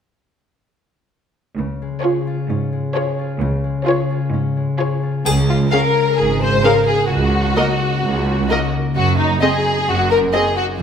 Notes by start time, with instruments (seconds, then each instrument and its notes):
1.57 cello section C#2, harp C#3
1.82 harp G#3
2.03 viola section F4, violin section G#4 C#5, harp G#4
2.27 harp F4
2.50 cello section G#2, harp C#4
2.73 harp G#3
2.95 viola section F4, harp G#4, violin section G#4 C#5
3.19 harp F4
3.41 cello section C#2, harp C#3
3.64 harp G#3
3.86 viola section F4, violin section G#4 C#5, harp G#4
4.10 harp F4
4.33 cello section G#2, harp C#4
4.57 harp G#3
4.79 viola section F4, harp G#4, violin section G#4 C#5
5.03 harp F4
5.25 cello section C#2, double bass section C#2, harp C#3, violin section G#4, triangle
5.49 harp F4, violin section F4
5.71 harp C#4, viola section C#4 G#4, violin section A#4 F5
5.96 harp G#4
6.17 double bass section G#1, cello section G#2, harp G#3, violin section G#4
6.42 harp F4, violin section C5
6.64 viola section C#4 G#4, harp C#4, violin section A#4 F5
6.87 violin section G#4, harp G#4
7.11 cello section C#2, double bass section C#2, harp C#3, violin section F#4
7.34 harp D#4
7.57 viola section A#3 A#4, harp A#3, violin section D#5
7.80 harp A#4
8.03 double bass section C#2, cello section C#2, harp C#3
8.27 harp D#4
8.50 viola section A#3 A#4, harp A#3, violin section D#5
8.73 harp A#4
8.95 double bass section F#1, harp F#2, cello section F#2, violin section F#4
9.17 violin section D#4, harp D#4
9.42 harp C4, viola section C4 G#4, violin section G#4 D#5
9.65 harp G#4
9.87 double bass section F#1, cello section F#2, harp F#2, violin section F#4
10.11 harp D#4, violin section A#4
10.33 viola section C4 G#4, harp C4, violin section G#4 D#5
10.57 violin section F#4, harp G#4
10.79 harp F2, cello section F2, violin section F4